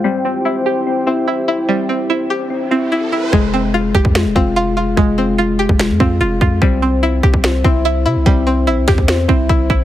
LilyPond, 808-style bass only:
\new Staff \with { instrumentName = "808-style bass" } { \clef bass \time 4/4 \key f \minor \tempo 4 = 146 r1 | r1 | f,,4. f,,16 f,8 ees,,16 f,,4. | f,,4.~ f,,16 f,,8 f,16 f,8 f,,8 f,8 |
c,4. c,4 c,4 c16 c,16 | c,4 bes,,16 c,16 e,4 c,8 c,8 bes,,8 | }